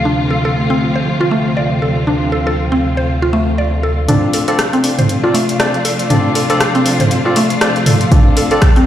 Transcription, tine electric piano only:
4.08 C4 D4 F4 A4 D5
4.48 C4 D4 F4 A4 D5
4.84 C4 D4 F4 A4 D5
5.23 C4 D4 F4 A4 D5
5.60 C4 D4 F4 A4 D5
6.10 C4 D4 F4 A4 D5
6.50 C4 D4 F4 A4 D5
6.86 C4 D4 F4 A4 D5
7.25 C4 D4 F4 A4 D5
7.61 C4 D4 F4 A4 D5
8.12 C4 D4 F4 A4 D5
8.51 C4 D4 F4 A4 D5

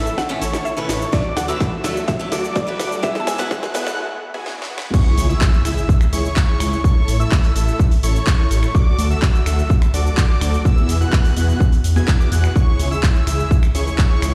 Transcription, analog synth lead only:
Already playing: E6
0.41 C#6
0.77 C#6
1.13 D6
1.49 E6
1.84 E6
2.32 D6
2.68 D6
3.03 E6
3.39 F#6
3.75 F#6
4.94 C#6
5.29 E6
5.65 E6
6.13 C#6
6.48 C#6
6.84 C#6
7.20 E6
7.56 E6
8.03 C#6
8.39 C#6
8.75 D6
9.10 E6
9.46 E6
9.94 D6
10.29 D6
10.65 E6
11.01 F#6
11.37 F#6
11.96 G#6
12.20 D6
12.32 F#6
12.56 C#6
12.91 E6
13.27 E6
13.75 C#6
14.10 C#6

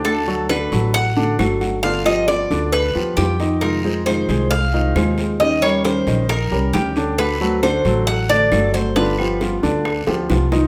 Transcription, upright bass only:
Already playing: D2
0.72 A1
1.39 G1
2.51 D2
2.95 D#2
3.17 F2
4.29 C2
4.95 D#2
6.07 A#1
6.51 C2
6.74 D2
7.85 A1
8.52 G1
9.63 D2
10.07 D2
10.30 C2

